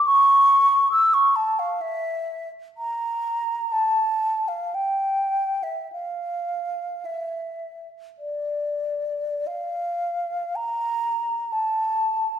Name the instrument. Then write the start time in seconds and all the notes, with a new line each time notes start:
flute
0.05 C#6
0.92 E6
1.14 C#6
1.36 A5
1.59 F5
1.81 E5
2.77 A#5
3.72 A5
4.48 F5
4.74 G5
5.63 E5
5.92 F5
7.05 E5
8.19 D5
9.47 F5
10.56 A#5
11.52 A5